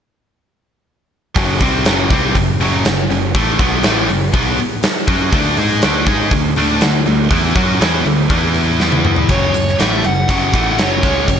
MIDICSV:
0, 0, Header, 1, 8, 480
1, 0, Start_track
1, 0, Key_signature, 3, "minor"
1, 0, Tempo, 495868
1, 1327, Time_signature, 4, 2, 24, 8
1, 11033, End_track
2, 0, Start_track
2, 0, Title_t, "Lead electric guitar"
2, 0, Program_c, 0, 29
2, 9017, Note_on_c, 0, 73, 82
2, 9489, Note_on_c, 0, 76, 78
2, 9505, Note_off_c, 0, 73, 0
2, 9733, Note_off_c, 0, 76, 0
2, 9743, Note_on_c, 0, 78, 82
2, 9957, Note_off_c, 0, 78, 0
2, 9971, Note_on_c, 0, 78, 81
2, 10462, Note_off_c, 0, 78, 0
2, 10481, Note_on_c, 0, 73, 73
2, 10933, Note_off_c, 0, 73, 0
2, 10945, Note_on_c, 0, 73, 73
2, 11033, Note_off_c, 0, 73, 0
2, 11033, End_track
3, 0, Start_track
3, 0, Title_t, "Overdriven electric guitar"
3, 0, Program_c, 1, 29
3, 1323, Note_on_c, 1, 42, 86
3, 1329, Note_on_c, 1, 49, 92
3, 1334, Note_on_c, 1, 54, 98
3, 1555, Note_off_c, 1, 49, 0
3, 1558, Note_off_c, 1, 42, 0
3, 1559, Note_on_c, 1, 48, 82
3, 1563, Note_off_c, 1, 54, 0
3, 1570, Note_on_c, 1, 55, 76
3, 1575, Note_on_c, 1, 60, 85
3, 1796, Note_off_c, 1, 48, 0
3, 1799, Note_on_c, 1, 42, 77
3, 1802, Note_off_c, 1, 55, 0
3, 1804, Note_off_c, 1, 60, 0
3, 1809, Note_on_c, 1, 49, 90
3, 1812, Note_on_c, 1, 54, 85
3, 2030, Note_off_c, 1, 49, 0
3, 2034, Note_on_c, 1, 48, 93
3, 2036, Note_off_c, 1, 42, 0
3, 2036, Note_off_c, 1, 54, 0
3, 2040, Note_on_c, 1, 55, 101
3, 2046, Note_on_c, 1, 60, 100
3, 2273, Note_off_c, 1, 48, 0
3, 2277, Note_off_c, 1, 55, 0
3, 2279, Note_off_c, 1, 60, 0
3, 2283, Note_on_c, 1, 42, 56
3, 2288, Note_on_c, 1, 49, 71
3, 2477, Note_off_c, 1, 42, 0
3, 2480, Note_off_c, 1, 49, 0
3, 2518, Note_on_c, 1, 42, 99
3, 2526, Note_on_c, 1, 49, 105
3, 2532, Note_on_c, 1, 54, 97
3, 2751, Note_off_c, 1, 42, 0
3, 2755, Note_off_c, 1, 49, 0
3, 2762, Note_on_c, 1, 42, 67
3, 2763, Note_off_c, 1, 54, 0
3, 2766, Note_on_c, 1, 49, 66
3, 2957, Note_off_c, 1, 42, 0
3, 2959, Note_off_c, 1, 49, 0
3, 3002, Note_on_c, 1, 42, 59
3, 3006, Note_on_c, 1, 49, 70
3, 3197, Note_off_c, 1, 42, 0
3, 3199, Note_off_c, 1, 49, 0
3, 3244, Note_on_c, 1, 45, 82
3, 3250, Note_on_c, 1, 52, 89
3, 3257, Note_on_c, 1, 57, 89
3, 3472, Note_off_c, 1, 45, 0
3, 3476, Note_on_c, 1, 47, 81
3, 3482, Note_off_c, 1, 52, 0
3, 3485, Note_off_c, 1, 57, 0
3, 3485, Note_on_c, 1, 54, 85
3, 3489, Note_on_c, 1, 59, 97
3, 3712, Note_off_c, 1, 47, 0
3, 3716, Note_on_c, 1, 45, 85
3, 3719, Note_off_c, 1, 54, 0
3, 3721, Note_off_c, 1, 59, 0
3, 3725, Note_on_c, 1, 52, 90
3, 3735, Note_on_c, 1, 57, 93
3, 3953, Note_off_c, 1, 45, 0
3, 3954, Note_on_c, 1, 42, 62
3, 3957, Note_on_c, 1, 49, 65
3, 3959, Note_off_c, 1, 52, 0
3, 3964, Note_off_c, 1, 57, 0
3, 4152, Note_off_c, 1, 42, 0
3, 4154, Note_off_c, 1, 49, 0
3, 4189, Note_on_c, 1, 47, 82
3, 4197, Note_on_c, 1, 54, 82
3, 4202, Note_on_c, 1, 59, 101
3, 4430, Note_off_c, 1, 47, 0
3, 4435, Note_off_c, 1, 54, 0
3, 4437, Note_off_c, 1, 59, 0
3, 4912, Note_on_c, 1, 54, 87
3, 4919, Note_on_c, 1, 61, 100
3, 4928, Note_on_c, 1, 66, 99
3, 5151, Note_off_c, 1, 54, 0
3, 5155, Note_off_c, 1, 61, 0
3, 5156, Note_on_c, 1, 50, 90
3, 5160, Note_off_c, 1, 66, 0
3, 5166, Note_on_c, 1, 57, 93
3, 5172, Note_on_c, 1, 62, 108
3, 5389, Note_off_c, 1, 57, 0
3, 5393, Note_off_c, 1, 50, 0
3, 5393, Note_on_c, 1, 56, 88
3, 5396, Note_off_c, 1, 62, 0
3, 5400, Note_on_c, 1, 63, 85
3, 5403, Note_on_c, 1, 68, 92
3, 5631, Note_on_c, 1, 50, 82
3, 5632, Note_off_c, 1, 56, 0
3, 5635, Note_off_c, 1, 63, 0
3, 5637, Note_off_c, 1, 68, 0
3, 5641, Note_on_c, 1, 57, 93
3, 5644, Note_on_c, 1, 62, 95
3, 5868, Note_off_c, 1, 57, 0
3, 5871, Note_off_c, 1, 50, 0
3, 5872, Note_on_c, 1, 56, 85
3, 5875, Note_off_c, 1, 62, 0
3, 5879, Note_on_c, 1, 63, 90
3, 5885, Note_on_c, 1, 68, 101
3, 6111, Note_off_c, 1, 56, 0
3, 6115, Note_off_c, 1, 63, 0
3, 6118, Note_off_c, 1, 68, 0
3, 6118, Note_on_c, 1, 50, 60
3, 6119, Note_on_c, 1, 57, 71
3, 6314, Note_off_c, 1, 50, 0
3, 6314, Note_off_c, 1, 57, 0
3, 6354, Note_on_c, 1, 50, 92
3, 6361, Note_on_c, 1, 57, 103
3, 6367, Note_on_c, 1, 62, 113
3, 6592, Note_off_c, 1, 50, 0
3, 6595, Note_off_c, 1, 57, 0
3, 6599, Note_off_c, 1, 62, 0
3, 6603, Note_on_c, 1, 50, 55
3, 6608, Note_on_c, 1, 57, 78
3, 6795, Note_off_c, 1, 50, 0
3, 6798, Note_off_c, 1, 57, 0
3, 6832, Note_on_c, 1, 50, 64
3, 6835, Note_on_c, 1, 57, 70
3, 7030, Note_off_c, 1, 50, 0
3, 7032, Note_off_c, 1, 57, 0
3, 7070, Note_on_c, 1, 52, 87
3, 7076, Note_on_c, 1, 59, 90
3, 7084, Note_on_c, 1, 64, 95
3, 7306, Note_off_c, 1, 52, 0
3, 7310, Note_on_c, 1, 54, 86
3, 7312, Note_off_c, 1, 59, 0
3, 7317, Note_off_c, 1, 64, 0
3, 7318, Note_on_c, 1, 61, 102
3, 7327, Note_on_c, 1, 66, 93
3, 7546, Note_off_c, 1, 54, 0
3, 7550, Note_on_c, 1, 52, 85
3, 7553, Note_off_c, 1, 61, 0
3, 7557, Note_on_c, 1, 59, 96
3, 7558, Note_off_c, 1, 66, 0
3, 7564, Note_on_c, 1, 64, 90
3, 7789, Note_off_c, 1, 52, 0
3, 7793, Note_off_c, 1, 59, 0
3, 7793, Note_on_c, 1, 50, 70
3, 7796, Note_off_c, 1, 64, 0
3, 7799, Note_on_c, 1, 57, 74
3, 7990, Note_off_c, 1, 50, 0
3, 7993, Note_off_c, 1, 57, 0
3, 8028, Note_on_c, 1, 52, 76
3, 8039, Note_on_c, 1, 59, 90
3, 8043, Note_on_c, 1, 64, 99
3, 8988, Note_off_c, 1, 52, 0
3, 8993, Note_on_c, 1, 42, 74
3, 8994, Note_off_c, 1, 59, 0
3, 8996, Note_off_c, 1, 64, 0
3, 8999, Note_on_c, 1, 49, 79
3, 9006, Note_on_c, 1, 54, 89
3, 9231, Note_off_c, 1, 42, 0
3, 9234, Note_off_c, 1, 49, 0
3, 9238, Note_off_c, 1, 54, 0
3, 9242, Note_on_c, 1, 42, 59
3, 9247, Note_on_c, 1, 49, 68
3, 9435, Note_off_c, 1, 42, 0
3, 9437, Note_off_c, 1, 49, 0
3, 9476, Note_on_c, 1, 45, 77
3, 9487, Note_on_c, 1, 52, 90
3, 9489, Note_on_c, 1, 57, 88
3, 9713, Note_off_c, 1, 45, 0
3, 9718, Note_off_c, 1, 52, 0
3, 9719, Note_off_c, 1, 57, 0
3, 9728, Note_on_c, 1, 42, 61
3, 9730, Note_on_c, 1, 49, 72
3, 9918, Note_off_c, 1, 42, 0
3, 9919, Note_off_c, 1, 49, 0
3, 9960, Note_on_c, 1, 42, 79
3, 9970, Note_on_c, 1, 49, 90
3, 9974, Note_on_c, 1, 54, 91
3, 10195, Note_off_c, 1, 42, 0
3, 10199, Note_off_c, 1, 49, 0
3, 10202, Note_off_c, 1, 54, 0
3, 10203, Note_on_c, 1, 45, 94
3, 10214, Note_on_c, 1, 52, 100
3, 10218, Note_on_c, 1, 57, 100
3, 10437, Note_off_c, 1, 45, 0
3, 10442, Note_off_c, 1, 52, 0
3, 10442, Note_on_c, 1, 42, 83
3, 10444, Note_off_c, 1, 57, 0
3, 10448, Note_on_c, 1, 49, 87
3, 10454, Note_on_c, 1, 54, 90
3, 10672, Note_off_c, 1, 49, 0
3, 10676, Note_off_c, 1, 42, 0
3, 10682, Note_off_c, 1, 54, 0
3, 10683, Note_on_c, 1, 49, 89
3, 10692, Note_on_c, 1, 56, 87
3, 10699, Note_on_c, 1, 61, 90
3, 10917, Note_off_c, 1, 49, 0
3, 10921, Note_off_c, 1, 56, 0
3, 10925, Note_off_c, 1, 61, 0
3, 10927, Note_on_c, 1, 42, 59
3, 10932, Note_on_c, 1, 49, 64
3, 11033, Note_off_c, 1, 42, 0
3, 11033, Note_off_c, 1, 49, 0
3, 11033, End_track
4, 0, Start_track
4, 0, Title_t, "Picked electric bass"
4, 0, Program_c, 2, 34
4, 1317, Note_on_c, 2, 30, 87
4, 1545, Note_off_c, 2, 30, 0
4, 1558, Note_on_c, 2, 36, 83
4, 1786, Note_off_c, 2, 36, 0
4, 1798, Note_on_c, 2, 30, 89
4, 2025, Note_off_c, 2, 30, 0
4, 2034, Note_on_c, 2, 36, 83
4, 2264, Note_off_c, 2, 36, 0
4, 2276, Note_on_c, 2, 30, 73
4, 2504, Note_off_c, 2, 30, 0
4, 2513, Note_on_c, 2, 30, 87
4, 2743, Note_off_c, 2, 30, 0
4, 2765, Note_on_c, 2, 30, 81
4, 2987, Note_off_c, 2, 30, 0
4, 2993, Note_on_c, 2, 30, 74
4, 3223, Note_off_c, 2, 30, 0
4, 3236, Note_on_c, 2, 33, 84
4, 3465, Note_off_c, 2, 33, 0
4, 3479, Note_on_c, 2, 35, 78
4, 3706, Note_off_c, 2, 35, 0
4, 3726, Note_on_c, 2, 33, 97
4, 3950, Note_off_c, 2, 33, 0
4, 3958, Note_on_c, 2, 30, 72
4, 4185, Note_off_c, 2, 30, 0
4, 4197, Note_on_c, 2, 35, 79
4, 4424, Note_off_c, 2, 35, 0
4, 4917, Note_on_c, 2, 42, 90
4, 5144, Note_off_c, 2, 42, 0
4, 5155, Note_on_c, 2, 38, 90
4, 5383, Note_off_c, 2, 38, 0
4, 5404, Note_on_c, 2, 44, 80
4, 5628, Note_off_c, 2, 44, 0
4, 5654, Note_on_c, 2, 38, 89
4, 5861, Note_off_c, 2, 38, 0
4, 5867, Note_on_c, 2, 44, 88
4, 6099, Note_off_c, 2, 44, 0
4, 6109, Note_on_c, 2, 38, 73
4, 6340, Note_off_c, 2, 38, 0
4, 6368, Note_on_c, 2, 38, 88
4, 6589, Note_off_c, 2, 38, 0
4, 6611, Note_on_c, 2, 38, 77
4, 6831, Note_off_c, 2, 38, 0
4, 6850, Note_on_c, 2, 38, 81
4, 7070, Note_off_c, 2, 38, 0
4, 7075, Note_on_c, 2, 40, 84
4, 7302, Note_off_c, 2, 40, 0
4, 7315, Note_on_c, 2, 42, 78
4, 7542, Note_off_c, 2, 42, 0
4, 7561, Note_on_c, 2, 40, 89
4, 7785, Note_off_c, 2, 40, 0
4, 7803, Note_on_c, 2, 38, 75
4, 8026, Note_off_c, 2, 38, 0
4, 8036, Note_on_c, 2, 40, 92
4, 8961, Note_off_c, 2, 40, 0
4, 8995, Note_on_c, 2, 30, 80
4, 9222, Note_off_c, 2, 30, 0
4, 9254, Note_on_c, 2, 30, 64
4, 9472, Note_off_c, 2, 30, 0
4, 9492, Note_on_c, 2, 33, 85
4, 9712, Note_off_c, 2, 33, 0
4, 9729, Note_on_c, 2, 30, 77
4, 9950, Note_off_c, 2, 30, 0
4, 9958, Note_on_c, 2, 30, 85
4, 10184, Note_off_c, 2, 30, 0
4, 10199, Note_on_c, 2, 33, 89
4, 10425, Note_off_c, 2, 33, 0
4, 10447, Note_on_c, 2, 30, 84
4, 10669, Note_off_c, 2, 30, 0
4, 10683, Note_on_c, 2, 37, 88
4, 10907, Note_off_c, 2, 37, 0
4, 10918, Note_on_c, 2, 30, 74
4, 11033, Note_off_c, 2, 30, 0
4, 11033, End_track
5, 0, Start_track
5, 0, Title_t, "Muted distorted electric guitar strokes"
5, 4447, Note_on_c, 9, 29, 57
5, 4544, Note_off_c, 9, 29, 0
5, 4693, Note_on_c, 9, 29, 54
5, 4790, Note_off_c, 9, 29, 0
5, 11033, End_track
6, 0, Start_track
6, 0, Title_t, "Muted overdriven electric guitar strokes"
6, 4438, Note_on_c, 9, 29, 62
6, 4535, Note_off_c, 9, 29, 0
6, 4674, Note_on_c, 9, 29, 53
6, 4771, Note_off_c, 9, 29, 0
6, 11033, End_track
7, 0, Start_track
7, 0, Title_t, "Muted picked electric bass strokes"
7, 4445, Note_on_c, 9, 29, 39
7, 4542, Note_off_c, 9, 29, 0
7, 4687, Note_on_c, 9, 29, 38
7, 4784, Note_off_c, 9, 29, 0
7, 11033, End_track
8, 0, Start_track
8, 0, Title_t, "Drums"
8, 1315, Note_on_c, 9, 46, 65
8, 1316, Note_on_c, 9, 36, 99
8, 1412, Note_off_c, 9, 46, 0
8, 1413, Note_off_c, 9, 36, 0
8, 1552, Note_on_c, 9, 46, 61
8, 1556, Note_on_c, 9, 36, 96
8, 1649, Note_off_c, 9, 46, 0
8, 1652, Note_off_c, 9, 36, 0
8, 1794, Note_on_c, 9, 46, 76
8, 1803, Note_on_c, 9, 38, 110
8, 1891, Note_off_c, 9, 46, 0
8, 1899, Note_off_c, 9, 38, 0
8, 2038, Note_on_c, 9, 36, 101
8, 2040, Note_on_c, 9, 46, 56
8, 2134, Note_off_c, 9, 36, 0
8, 2137, Note_off_c, 9, 46, 0
8, 2275, Note_on_c, 9, 46, 66
8, 2278, Note_on_c, 9, 36, 75
8, 2372, Note_off_c, 9, 46, 0
8, 2375, Note_off_c, 9, 36, 0
8, 2526, Note_on_c, 9, 46, 51
8, 2623, Note_off_c, 9, 46, 0
8, 2760, Note_on_c, 9, 46, 78
8, 2768, Note_on_c, 9, 38, 113
8, 2856, Note_off_c, 9, 46, 0
8, 2865, Note_off_c, 9, 38, 0
8, 3005, Note_on_c, 9, 46, 54
8, 3102, Note_off_c, 9, 46, 0
8, 3240, Note_on_c, 9, 36, 99
8, 3241, Note_on_c, 9, 46, 76
8, 3337, Note_off_c, 9, 36, 0
8, 3338, Note_off_c, 9, 46, 0
8, 3478, Note_on_c, 9, 36, 103
8, 3478, Note_on_c, 9, 46, 53
8, 3574, Note_off_c, 9, 46, 0
8, 3575, Note_off_c, 9, 36, 0
8, 3711, Note_on_c, 9, 46, 78
8, 3720, Note_on_c, 9, 38, 105
8, 3808, Note_off_c, 9, 46, 0
8, 3817, Note_off_c, 9, 38, 0
8, 3962, Note_on_c, 9, 46, 56
8, 4059, Note_off_c, 9, 46, 0
8, 4199, Note_on_c, 9, 36, 87
8, 4200, Note_on_c, 9, 46, 65
8, 4295, Note_off_c, 9, 36, 0
8, 4297, Note_off_c, 9, 46, 0
8, 4437, Note_on_c, 9, 46, 52
8, 4534, Note_off_c, 9, 46, 0
8, 4674, Note_on_c, 9, 46, 74
8, 4683, Note_on_c, 9, 38, 111
8, 4771, Note_off_c, 9, 46, 0
8, 4779, Note_off_c, 9, 38, 0
8, 4913, Note_on_c, 9, 46, 53
8, 4916, Note_on_c, 9, 36, 94
8, 5010, Note_off_c, 9, 46, 0
8, 5012, Note_off_c, 9, 36, 0
8, 5155, Note_on_c, 9, 36, 100
8, 5157, Note_on_c, 9, 46, 73
8, 5252, Note_off_c, 9, 36, 0
8, 5253, Note_off_c, 9, 46, 0
8, 5393, Note_on_c, 9, 46, 50
8, 5490, Note_off_c, 9, 46, 0
8, 5633, Note_on_c, 9, 46, 77
8, 5642, Note_on_c, 9, 38, 109
8, 5730, Note_off_c, 9, 46, 0
8, 5738, Note_off_c, 9, 38, 0
8, 5871, Note_on_c, 9, 46, 57
8, 5872, Note_on_c, 9, 36, 99
8, 5968, Note_off_c, 9, 46, 0
8, 5969, Note_off_c, 9, 36, 0
8, 6108, Note_on_c, 9, 46, 67
8, 6111, Note_on_c, 9, 36, 88
8, 6204, Note_off_c, 9, 46, 0
8, 6208, Note_off_c, 9, 36, 0
8, 6352, Note_on_c, 9, 46, 54
8, 6449, Note_off_c, 9, 46, 0
8, 6593, Note_on_c, 9, 46, 85
8, 6601, Note_on_c, 9, 38, 117
8, 6689, Note_off_c, 9, 46, 0
8, 6698, Note_off_c, 9, 38, 0
8, 6835, Note_on_c, 9, 46, 52
8, 6932, Note_off_c, 9, 46, 0
8, 7073, Note_on_c, 9, 36, 95
8, 7073, Note_on_c, 9, 46, 71
8, 7170, Note_off_c, 9, 36, 0
8, 7170, Note_off_c, 9, 46, 0
8, 7314, Note_on_c, 9, 36, 104
8, 7318, Note_on_c, 9, 46, 52
8, 7411, Note_off_c, 9, 36, 0
8, 7415, Note_off_c, 9, 46, 0
8, 7562, Note_on_c, 9, 46, 79
8, 7571, Note_on_c, 9, 38, 117
8, 7659, Note_off_c, 9, 46, 0
8, 7667, Note_off_c, 9, 38, 0
8, 7802, Note_on_c, 9, 46, 56
8, 7898, Note_off_c, 9, 46, 0
8, 8031, Note_on_c, 9, 46, 67
8, 8034, Note_on_c, 9, 36, 93
8, 8128, Note_off_c, 9, 46, 0
8, 8131, Note_off_c, 9, 36, 0
8, 8269, Note_on_c, 9, 46, 47
8, 8366, Note_off_c, 9, 46, 0
8, 8518, Note_on_c, 9, 38, 66
8, 8615, Note_off_c, 9, 38, 0
8, 8635, Note_on_c, 9, 48, 70
8, 8732, Note_off_c, 9, 48, 0
8, 8757, Note_on_c, 9, 45, 85
8, 8854, Note_off_c, 9, 45, 0
8, 8870, Note_on_c, 9, 43, 78
8, 8967, Note_off_c, 9, 43, 0
8, 8991, Note_on_c, 9, 42, 73
8, 8995, Note_on_c, 9, 36, 84
8, 9088, Note_off_c, 9, 42, 0
8, 9092, Note_off_c, 9, 36, 0
8, 9236, Note_on_c, 9, 42, 63
8, 9333, Note_off_c, 9, 42, 0
8, 9368, Note_on_c, 9, 38, 29
8, 9464, Note_off_c, 9, 38, 0
8, 9484, Note_on_c, 9, 42, 86
8, 9493, Note_on_c, 9, 38, 102
8, 9581, Note_off_c, 9, 42, 0
8, 9589, Note_off_c, 9, 38, 0
8, 9721, Note_on_c, 9, 42, 63
8, 9818, Note_off_c, 9, 42, 0
8, 9959, Note_on_c, 9, 36, 88
8, 9963, Note_on_c, 9, 42, 82
8, 10056, Note_off_c, 9, 36, 0
8, 10060, Note_off_c, 9, 42, 0
8, 10199, Note_on_c, 9, 36, 88
8, 10200, Note_on_c, 9, 42, 61
8, 10296, Note_off_c, 9, 36, 0
8, 10297, Note_off_c, 9, 42, 0
8, 10440, Note_on_c, 9, 42, 98
8, 10449, Note_on_c, 9, 38, 114
8, 10537, Note_off_c, 9, 42, 0
8, 10546, Note_off_c, 9, 38, 0
8, 10680, Note_on_c, 9, 36, 91
8, 10683, Note_on_c, 9, 42, 64
8, 10776, Note_off_c, 9, 36, 0
8, 10779, Note_off_c, 9, 42, 0
8, 10920, Note_on_c, 9, 36, 74
8, 10920, Note_on_c, 9, 42, 81
8, 11016, Note_off_c, 9, 36, 0
8, 11017, Note_off_c, 9, 42, 0
8, 11033, End_track
0, 0, End_of_file